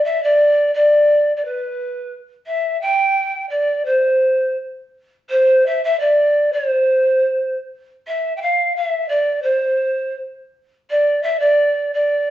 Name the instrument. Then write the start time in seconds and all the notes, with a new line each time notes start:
pan flute
0.04 E5
0.23 D5
0.74 D5
1.37 D5
1.45 B4
2.47 E5
2.81 G5
3.50 D5
3.85 C5
5.30 C5
5.66 E5
5.84 E5
6.00 D5
6.53 C5
8.07 E5
8.37 G5
8.42 F5
8.76 E5
9.09 D5
9.43 C5
10.90 D5
11.23 E5
11.40 D5
11.94 D5